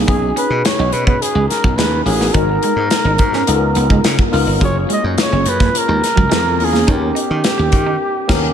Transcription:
Already playing: A#3 D#4
0.07 B1 B3 C#4 D#4 F#4 G#4, kick, closed hi-hat
0.22 muted clean electric guitar stroke
0.36 C#4 B4, closed hi-hat
0.50 B2
0.65 C#5, snare, closed hi-hat
0.79 B1 D#4
0.92 B2 B4, muted clean electric guitar stroke, closed hi-hat
1.07 B3 B4, kick
1.22 G#4, closed hi-hat
1.35 C#2 G#3
1.49 A#4, muted clean electric guitar stroke, snare, closed hi-hat
1.64 B1 F#3, kick
1.76 D#2 G#3 B4, snare, closed hi-hat
2.04 A1 C#4 D#4 F#4 G#4 A#4, muted clean electric guitar stroke, open hi-hat
2.21 B3, snare
2.33 G#1 G#3 B3 D#4 F#4 A#4, kick, closed hi-hat
2.49 muted clean electric guitar stroke
2.63 G#3, closed hi-hat
2.76 G#2
2.90 snare, closed hi-hat
3.04 G#1 D#4
3.18 G#2, muted clean electric guitar stroke, kick, closed hi-hat
3.33 C#4, snare
3.47 C#2 B3 D#4 F4 A4, muted clean electric guitar stroke, closed hi-hat
3.55 A#4
3.75 C#2 B3, closed hi-hat
3.90 G#3, kick
4.04 C#3, snare, closed hi-hat
4.19 kick
4.32 C#2 B3 D#4 F4 A#4, open hi-hat
4.47 G1
4.60 F#1 F#3 A#3 C#4 F4 G#4, kick, closed hi-hat
4.64 C#5
4.76 muted clean electric guitar stroke
4.89 G#3 D#5, closed hi-hat
5.04 F#2
5.18 C#5, snare, closed hi-hat
5.32 F#1 C#4
5.45 F#2 B4, muted clean electric guitar stroke, closed hi-hat
5.60 A#3, kick, snare
5.75 A#4, closed hi-hat
5.88 D#2 G#3
6.02 muted clean electric guitar stroke, snare, closed hi-hat
6.16 C#2 F#3, kick
6.30 F2 G#3, snare, closed hi-hat
6.59 E2 A#3 C#4 F4 G#4, muted clean electric guitar stroke, open hi-hat
6.64 G#4
6.73 A#3, snare
6.87 D#2 B3 C#4 D#4 G4 A#4, kick, closed hi-hat
6.92 G4
7.02 muted clean electric guitar stroke
7.15 D#4, closed hi-hat
7.30 D#3
7.44 snare, closed hi-hat
7.58 D#2 G4
7.72 D#3, muted clean electric guitar stroke, kick, closed hi-hat
7.86 D#4
8.28 D#2 B3 C#4 G4 A#4, kick, snare, crash

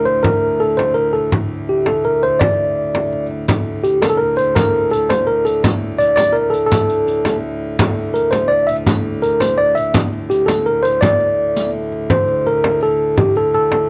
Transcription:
Already playing: D2 A2
0.05 C5
0.23 A#4, frame drum
0.60 A4
0.77 C5, frame drum
0.94 A#4
1.13 A4
1.32 frame drum
1.69 G4
1.86 A4, frame drum
2.05 A#4
2.23 C5
2.39 D5, frame drum
2.95 frame drum
3.13 frame drum
3.31 frame drum
3.47 D2 A2, riq, frame drum
3.83 G4, riq
4.02 A4 A#4, riq, frame drum
4.09 A4
4.17 A#4
4.37 C5, riq
4.55 A#4, riq, frame drum
4.91 A4, riq
5.09 C5, riq, frame drum
5.27 A#4
5.45 A4, riq
5.64 riq, frame drum
5.98 D5, riq
6.16 D5, riq, frame drum
6.33 A#4
6.50 A4, riq
6.66 A4
6.72 riq, frame drum
6.89 riq, frame drum
7.07 riq, frame drum
7.25 riq, frame drum
7.79 D2 A2, riq, frame drum
8.14 A#4, riq
8.31 C5, riq, frame drum
8.48 D5
8.67 E5, riq
8.87 riq, frame drum
9.22 A#4, riq
9.40 C5, riq, frame drum
9.58 D5
9.75 E5, riq
9.94 riq, frame drum
10.30 G4, riq
10.46 A4, riq, frame drum
10.66 A#4
10.83 C5, riq
11.01 D5, riq, frame drum
11.21 frame drum
11.56 riq
11.92 frame drum
12.10 D2 A2 C5, frame drum
12.28 frame drum
12.46 A#4, frame drum
12.64 frame drum
12.83 A4
13.17 G4, frame drum
13.36 A4, frame drum
13.54 A4, frame drum
13.72 frame drum

